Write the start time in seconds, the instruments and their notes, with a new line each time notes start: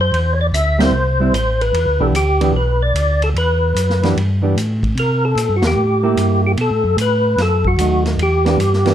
Already playing: tonewheel organ F#2
0.01 tonewheel organ C5
0.12 tonewheel organ E2, ride
0.33 tonewheel organ C#5
0.41 tonewheel organ D5
0.52 tonewheel organ D2 E5, hi-hat pedal, ride
0.79 hollow-body jazz guitar G3 C4 E4, tonewheel organ C5, snare, ride
0.92 tonewheel organ C2
1.20 hollow-body jazz guitar G3 C4 E4
1.32 tonewheel organ A1 C5, hi-hat pedal, ride
1.61 tonewheel organ B4, ride
1.73 tonewheel organ E2, ride
1.86 tonewheel organ D2
1.99 tonewheel organ B1 A4, hollow-body jazz guitar E3 B3 D4 G4
2.13 tonewheel organ D2 G4, hi-hat pedal, ride
2.41 hollow-body jazz guitar E3 B3 D4 G4, ride
2.53 tonewheel organ B1 B4
2.82 tonewheel organ D5
2.94 tonewheel organ D2, hi-hat pedal, ride
3.22 tonewheel organ A4, ride
3.34 tonewheel organ E2 B4, ride
3.75 tonewheel organ F#2, hi-hat pedal, ride
3.90 snare
4.03 hollow-body jazz guitar E3 B3 D4 G4, snare, ride
4.16 tonewheel organ G2, ride
4.42 hollow-body jazz guitar E3 B3 D4 G4
4.56 tonewheel organ A2, hi-hat pedal, ride
4.83 kick, ride
4.95 tonewheel organ C3, ride
4.99 tonewheel organ A#4
5.25 tonewheel organ A4
5.36 tonewheel organ A#2, hi-hat pedal, ride
5.49 tonewheel organ G2
5.56 tonewheel organ F#4
5.62 tonewheel organ E2, snare, ride
5.67 tonewheel organ G4
5.76 tonewheel organ A2
6.03 hollow-body jazz guitar A#3 E4 G4
6.17 tonewheel organ G2, hi-hat pedal, ride
6.47 tonewheel organ G4
6.57 tonewheel organ B2 A4, ride
6.70 tonewheel organ A2
6.84 tonewheel organ F#2
6.97 tonewheel organ A2, hi-hat pedal, ride
7.01 tonewheel organ B4
7.37 tonewheel organ F#2, snare, ride
7.42 tonewheel organ A4
7.65 tonewheel organ F#4, kick
7.77 tonewheel organ D#2, hollow-body jazz guitar F#3 A3 D#4, hi-hat pedal, ride
8.05 snare, ride
8.17 tonewheel organ E2, ride
8.23 tonewheel organ G4
8.45 hollow-body jazz guitar E3 B3 D4 G4, snare, ride
8.58 tonewheel organ G2, hi-hat pedal, ride
8.73 snare
8.85 hollow-body jazz guitar E3 B3 D4 G4, snare, ride